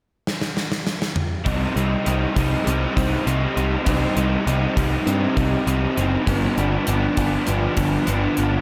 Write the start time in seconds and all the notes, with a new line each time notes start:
0.27 snare
0.41 snare
0.57 snare
0.72 snare
0.87 snare
1.02 snare
1.16 mid tom
1.44 C2 C3 G3 C4 D#4, kick, closed hi-hat
1.74 C2 G3 C4 D#4, closed hi-hat
2.05 C2 C3 G3 C4 D#4, closed hi-hat
2.34 C2 G3 C4 D#4, kick, closed hi-hat
2.64 C2 C3 G3 C4 D#4, closed hi-hat
2.96 C2 G3 C4 D#4, kick, closed hi-hat
3.25 C2 C3 G3 C4 D#4, closed hi-hat
3.56 C2 G3 C4 D#4, closed hi-hat
3.85 C2 C3 G3 C4 D#4, kick, closed hi-hat
4.15 C2 G3 C4 D#4, closed hi-hat
4.46 C2 C3 G3 C4 D#4, closed hi-hat
4.76 C2 G3 C4 D#4, kick, closed hi-hat
5.06 G2 C3 G3 C4 D#4, closed hi-hat
5.35 C2 G3 C4 D#4, kick, closed hi-hat
5.65 C2 C3 G3 C4 D#4, closed hi-hat
5.96 F#1 G3 C4 D#4, closed hi-hat
6.26 G1 G2 D3 F3 B3 D4, kick, closed hi-hat
6.57 G1 F3 B3 D4, closed hi-hat
6.86 G1 D3 F3 B3 D4, closed hi-hat
7.16 G1 F3 B3 D4, kick, closed hi-hat
7.46 G1 G2 D3 F3 B3 D4, closed hi-hat
7.77 G1 F3 B3 D4, kick, closed hi-hat
8.06 G1 D3 F3 B3 D4, closed hi-hat
8.36 G1 F3 B3 D4, closed hi-hat